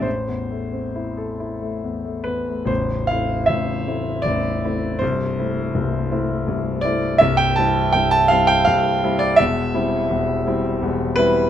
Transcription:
<<
  \new Staff \with { instrumentName = "Grand piano" } { \time 3/4 \key a \minor \tempo 4 = 82 c''2 r8 b'8 | c''8 f''8 e''4 d''4 | c''2 r8 d''8 | e''16 g''16 a''8 g''16 a''16 f''16 g''16 f''8. d''16 |
e''2 r8 b'8 | }
  \new Staff \with { instrumentName = "Grand piano" } { \time 3/4 \key a \minor a,,16 e,16 a16 c'16 e'16 a'16 e'16 a16 e,16 a16 e,16 a16 | <a,,, a,,>8 <a c' e'>8 <a,,, a,,>8 <a c' e'>8 <a,,, a,,>8 <a c' e'>8 | <c,, c,>8 <a c' e'>8 <c,, c,>8 <a c' e'>8 <c,, c,>8 <a c' e'>8 | <c,, c,>8 <g c' e'>8 <c,, c,>8 <g c' e'>8 <c,, c,>8 <g c' e'>8 |
<e,, e,>8 <g c' e'>8 <e,, e,>8 <g c' e'>8 <e,, e,>8 <g c' e'>8 | }
>>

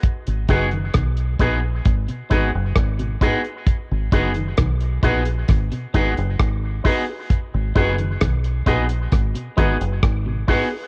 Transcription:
<<
  \new Staff \with { instrumentName = "Upright piano" } { \time 4/4 \key gis \minor \tempo 4 = 66 r8 <dis' fis' gis' b'>16 r8. <dis' fis' gis' b'>16 r8. <dis' fis' gis' b'>16 r8. <dis' fis' gis' b'>16 r16 | r8 <dis' fis' gis' b'>16 r8. <dis' fis' gis' b'>16 r8. <dis' fis' gis' b'>16 <gis' b'>16 r8 <dis' fis' gis' b'>16 <gis' b'>16 | r8 <dis' fis' gis' b'>16 r8. <dis' fis' gis' b'>16 r8. <dis' fis' gis' b'>16 <gis' b'>16 r8 <dis' fis' gis' b'>16 <gis' b'>16 | }
  \new Staff \with { instrumentName = "Clean electric guitar" } { \time 4/4 \key gis \minor r8 <b fis' gis'>8 r8 <b fis' gis'>8 r8 <b fis' gis'>8 r8 <b fis' gis'>8 | r8 <b fis' gis'>8 r8 <b fis' gis'>8 r8 <b fis' gis'>8 r8 <b fis' gis'>8 | r8 <b fis' gis'>8 r8 <b fis' gis'>8 r8 <b fis' gis'>8 r8 <b fis' gis'>8 | }
  \new Staff \with { instrumentName = "Clean electric guitar" } { \clef bass \time 4/4 \key gis \minor r8 cis16 dis16 dis16 r16 b,16 r8 b,16 dis16 r8 b,16 gis,16 r16 | r8 cis16 dis16 dis16 r16 b,16 r8 b,16 dis16 r4 r16 | r8 cis16 dis16 dis16 r16 b,16 r8 b,16 dis16 r8 b,16 gis,16 r16 | }
  \new Staff \with { instrumentName = "Fingered electric bass" } { \clef bass \time 4/4 \key gis \minor r16 gis,,16 fis,,8 b,,8 ais,,8 gis,,16 r16 gis,,16 fis,,16 gis,,8 r8 | r16 gis,,16 fis,,8 b,,8 ais,,8 gis,,16 r16 gis,,16 fis,,16 gis,,8 r8 | r16 gis,,16 fis,,8 b,,8 ais,,8 gis,,16 r16 gis,,16 fis,,16 gis,,8 r8 | }
  \new DrumStaff \with { instrumentName = "Drums" } \drummode { \time 4/4 <hh bd>16 hh16 <hh bd>16 hh16 <hh bd ss>16 hh16 <hh bd>8 <hh bd>16 hh16 <hh bd>8 <hh bd ss>16 hh16 <hh bd>16 hh16 | <hh bd>8 <hh bd>16 hh16 <hh bd ss>16 hh16 <hh bd>16 hh16 <hh bd ss>16 hh16 <hh bd>16 hh16 <hh bd ss>8 <hho bd>8 | <hh bd>8 <hh bd>16 hh16 <hh bd ss>16 hh16 <hh bd>16 hh16 <hh bd ss>16 hh16 <hh bd>16 hh16 <hh bd ss>8 <hho bd>8 | }
>>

